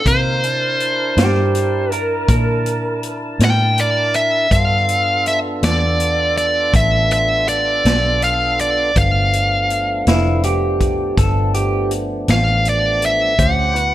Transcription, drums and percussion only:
0.06 kick medium
0.06 closed hi-hat medium
0.43 closed hi-hat soft
0.80 closed hi-hat soft
1.17 snare loud
1.17 closed hi-hat medium
1.55 closed hi-hat medium
1.92 closed hi-hat medium
2.28 kick loud
2.28 closed hi-hat medium
2.66 closed hi-hat medium
3.03 closed hi-hat soft
3.40 snare medium
3.40 closed hi-hat medium
3.78 closed hi-hat medium
4.14 closed hi-hat soft
4.51 kick medium
4.51 closed hi-hat medium
4.89 closed hi-hat medium
5.26 closed hi-hat soft
5.63 snare medium
5.63 closed hi-hat medium
6.00 closed hi-hat medium
6.37 closed hi-hat soft
6.74 kick loud
6.74 closed hi-hat medium
7.11 closed hi-hat soft
7.48 closed hi-hat soft
7.85 snare loud
7.85 closed hi-hat medium
8.22 closed hi-hat soft
8.59 closed hi-hat medium
8.96 kick loud
8.96 closed hi-hat medium
9.33 closed hi-hat medium
9.70 closed hi-hat soft
10.07 snare medium
10.07 closed hi-hat medium
10.43 closed hi-hat medium
10.81 kick medium
10.81 closed hi-hat medium
11.18 kick loud
11.18 snare soft
11.18 closed hi-hat medium
11.54 closed hi-hat medium
11.91 closed hi-hat medium
12.28 snare medium
12.28 closed hi-hat medium
12.65 closed hi-hat soft
13.02 closed hi-hat medium
13.39 kick loud
13.39 closed hi-hat medium
13.76 closed hi-hat soft

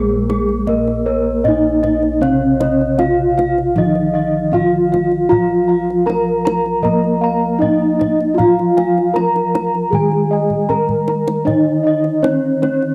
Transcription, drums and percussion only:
0.30 kendang high medium
0.49 kendang slap soft
0.67 kendang low medium
0.88 kendang slap soft
1.45 kendang low medium
1.84 kendang high medium
1.84 kendang low soft
2.03 kendang slap soft
2.23 kendang low medium
2.61 kendang high soft
2.81 kendang slap soft
2.99 kendang high medium
3.39 kendang high medium
3.58 kendang slap soft
3.76 kendang low medium
3.95 kendang slap soft
4.53 kendang low medium
4.94 kendang high soft
4.94 kendang low soft
5.11 kendang slap soft
5.32 kendang low medium
5.90 kendang slap soft
6.09 kendang high medium
6.47 kendang high medium
6.66 kendang slap soft
6.85 kendang low medium
7.04 kendang slap soft
7.62 kendang low medium
8.01 kendang high medium
8.01 kendang low soft
8.20 kendang slap soft
8.39 kendang low medium
8.59 kendang slap soft
8.78 kendang high medium
8.98 kendang slap soft
9.16 kendang high medium
9.36 kendang slap soft
9.55 kendang high medium
9.75 kendang slap soft
9.93 kendang low medium
10.12 kendang slap soft
10.50 kendang low soft
10.69 kendang low soft
10.89 kendang low medium
11.08 kendang high medium
11.28 kendang high medium
11.47 kendang low medium
12.04 kendang slap soft
12.24 kendang high medium
12.63 kendang high medium
12.82 kendang slap soft

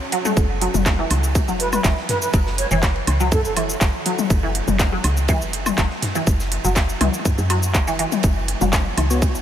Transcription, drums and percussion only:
0.12 open hi-hat medium
0.12 ride medium
0.25 high tom medium
0.25 shaker soft
0.37 kick loud
0.37 ride medium
0.37 shaker medium
0.61 open hi-hat medium
0.61 ride medium
0.74 high tom medium
0.74 ride soft
0.74 shaker soft
0.86 kick loud
0.86 snare loud
0.86 clap medium
0.86 ride medium
0.86 shaker medium
1.10 open hi-hat loud
1.10 ride medium
1.10 high woodblock medium
1.24 shaker soft
1.35 kick loud
1.35 ride medium
1.35 shaker medium
1.48 shaker soft
1.60 open hi-hat medium
1.60 ride medium
1.73 high tom medium
1.73 high woodblock medium
1.73 shaker soft
1.84 kick loud
1.84 snare loud
1.84 clap medium
1.84 ride medium
1.84 shaker soft
1.97 snare soft
2.09 snare medium
2.09 mid tom medium
2.09 open hi-hat medium
2.09 ride medium
2.22 ride soft
2.22 shaker soft
2.34 kick loud
2.34 ride medium
2.34 shaker medium
2.47 snare medium
2.58 open hi-hat medium
2.58 ride medium
2.71 shaker soft
2.83 kick loud
2.83 snare loud
2.83 clap medium
2.83 ride medium
2.83 shaker medium
2.96 ride soft
3.07 open hi-hat medium
3.07 ride medium
3.07 high woodblock medium
3.20 shaker soft
3.32 kick loud
3.32 mid tom medium
3.32 ride medium
3.32 shaker medium
3.45 ride soft
3.45 shaker soft
3.56 open hi-hat medium
3.56 ride medium
3.56 high woodblock medium
3.69 shaker soft
3.81 kick loud
3.81 snare loud
3.81 clap medium
3.81 ride medium
3.81 shaker medium
4.06 open hi-hat medium
4.06 ride medium
4.19 high tom medium
4.19 shaker soft
4.30 kick loud
4.30 ride medium
4.30 shaker medium
4.55 open hi-hat medium
4.55 ride medium
4.68 high tom medium
4.68 ride soft
4.68 shaker soft
4.80 kick loud
4.80 snare loud
4.80 clap loud
4.80 ride medium
4.80 shaker medium
5.04 open hi-hat medium
5.04 ride medium
5.04 high woodblock medium
5.17 shaker soft
5.28 kick loud
5.28 ride medium
5.28 shaker medium
5.42 shaker soft
5.53 open hi-hat medium
5.53 ride medium
5.66 high tom medium
5.66 high woodblock medium
5.66 shaker soft
5.77 kick loud
5.77 snare loud
5.77 clap medium
5.77 ride medium
5.77 shaker medium
5.90 snare soft
6.02 snare medium
6.02 mid tom medium
6.02 open hi-hat medium
6.02 ride medium
6.15 ride medium
6.15 shaker soft
6.27 kick loud
6.27 ride medium
6.27 shaker medium
6.40 snare soft
6.40 shaker soft
6.51 open hi-hat medium
6.51 ride medium
6.64 shaker soft
6.76 kick loud
6.76 snare loud
6.76 clap loud
6.76 ride medium
6.76 shaker medium
6.89 ride soft
6.89 shaker soft
7.01 open hi-hat medium
7.01 high tom medium
7.01 ride medium
7.01 high woodblock medium
7.14 shaker soft
7.25 kick loud
7.25 mid tom loud
7.25 ride medium
7.25 shaker medium
7.38 ride soft
7.38 shaker soft
7.50 open hi-hat medium
7.50 ride medium
7.50 high woodblock medium
7.63 shaker soft
7.74 kick loud
7.74 clap medium
7.74 ride medium
7.74 shaker medium
7.87 ride medium
7.87 shaker soft
7.99 open hi-hat medium
8.12 high tom medium
8.12 ride medium
8.12 shaker soft
8.23 kick loud
8.23 ride medium
8.23 shaker medium
8.48 open hi-hat medium
8.48 ride medium
8.61 high tom medium
8.61 ride soft
8.61 shaker soft
8.73 kick loud
8.73 snare loud
8.73 clap loud
8.73 ride medium
8.73 shaker medium
8.98 open hi-hat loud
8.98 ride medium
8.98 high woodblock medium
9.10 shaker soft
9.22 kick loud
9.22 ride loud
9.22 shaker medium
9.35 shaker soft

